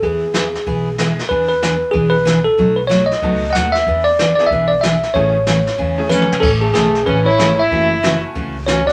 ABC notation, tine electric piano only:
X:1
M:4/4
L:1/16
Q:"Swing" 1/4=188
K:A
V:1 name="Tine electric piano"
G12 z4 | B2 B6 G2 B4 A2- | A2 B2 c2 ^d4- d3/2 d/2 f2 e2- | e2 d4 d2 e2 d2 e4 |
c12 B4 | A2 G2 G4 B2 c4 e2- | e6 z6 c2 d2 |]